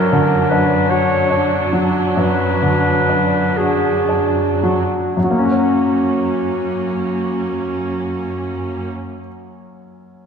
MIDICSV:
0, 0, Header, 1, 5, 480
1, 0, Start_track
1, 0, Key_signature, 6, "major"
1, 0, Tempo, 796813
1, 786, Tempo, 864553
1, 1266, Tempo, 924499
1, 1746, Tempo, 996678
1, 2226, Tempo, 1071429
1, 2706, Time_signature, 12, 3, 24, 8
1, 2706, Tempo, 988468
1, 5184, End_track
2, 0, Start_track
2, 0, Title_t, "Clarinet"
2, 0, Program_c, 0, 71
2, 0, Note_on_c, 0, 70, 53
2, 302, Note_on_c, 0, 71, 52
2, 311, Note_off_c, 0, 70, 0
2, 542, Note_on_c, 0, 73, 58
2, 551, Note_off_c, 0, 71, 0
2, 1062, Note_off_c, 0, 73, 0
2, 1272, Note_on_c, 0, 71, 50
2, 1975, Note_on_c, 0, 68, 45
2, 1982, Note_off_c, 0, 71, 0
2, 2475, Note_on_c, 0, 66, 32
2, 2482, Note_off_c, 0, 68, 0
2, 2701, Note_off_c, 0, 66, 0
2, 2704, Note_on_c, 0, 66, 33
2, 4524, Note_off_c, 0, 66, 0
2, 5184, End_track
3, 0, Start_track
3, 0, Title_t, "Grand piano"
3, 0, Program_c, 1, 0
3, 0, Control_c, 1, 64, 127
3, 0, Note_on_c, 1, 42, 44
3, 75, Note_on_c, 1, 50, 32
3, 309, Note_on_c, 1, 62, 33
3, 449, Note_off_c, 1, 50, 0
3, 543, Note_on_c, 1, 66, 33
3, 691, Note_off_c, 1, 62, 0
3, 783, Note_on_c, 1, 62, 34
3, 926, Note_off_c, 1, 66, 0
3, 1020, Note_on_c, 1, 54, 32
3, 1165, Note_off_c, 1, 62, 0
3, 1246, Note_off_c, 1, 42, 0
3, 1265, Note_on_c, 1, 42, 33
3, 1408, Note_off_c, 1, 54, 0
3, 1501, Note_on_c, 1, 50, 27
3, 1746, Note_on_c, 1, 62, 27
3, 1883, Note_off_c, 1, 50, 0
3, 1981, Note_on_c, 1, 66, 29
3, 2125, Note_off_c, 1, 62, 0
3, 2224, Note_on_c, 1, 62, 27
3, 2371, Note_off_c, 1, 66, 0
3, 2468, Note_on_c, 1, 54, 25
3, 2615, Note_off_c, 1, 62, 0
3, 2687, Note_off_c, 1, 42, 0
3, 2704, Note_off_c, 1, 54, 0
3, 2709, Note_on_c, 1, 42, 24
3, 2718, Control_c, 1, 64, 0
3, 2743, Note_on_c, 1, 54, 26
3, 2775, Note_on_c, 1, 58, 23
3, 2814, Note_on_c, 1, 61, 25
3, 2844, Note_on_c, 1, 66, 26
3, 2852, Control_c, 1, 64, 127
3, 2876, Note_on_c, 1, 73, 25
3, 4530, Note_off_c, 1, 42, 0
3, 4564, Note_off_c, 1, 54, 0
3, 4596, Note_off_c, 1, 58, 0
3, 4634, Note_off_c, 1, 61, 0
3, 4665, Note_off_c, 1, 66, 0
3, 4697, Note_off_c, 1, 73, 0
3, 5184, End_track
4, 0, Start_track
4, 0, Title_t, "Viola section"
4, 0, Program_c, 2, 48
4, 0, Note_on_c, 2, 54, 39
4, 0, Note_on_c, 2, 62, 37
4, 2551, Note_off_c, 2, 54, 0
4, 2570, Note_off_c, 2, 62, 0
4, 2700, Note_on_c, 2, 58, 29
4, 2701, Note_on_c, 2, 61, 28
4, 4520, Note_off_c, 2, 58, 0
4, 4522, Note_off_c, 2, 61, 0
4, 5184, End_track
5, 0, Start_track
5, 0, Title_t, "Cello section"
5, 0, Program_c, 3, 48
5, 0, Note_on_c, 3, 42, 39
5, 2556, Note_off_c, 3, 42, 0
5, 2703, Note_on_c, 3, 42, 31
5, 4524, Note_off_c, 3, 42, 0
5, 5184, End_track
0, 0, End_of_file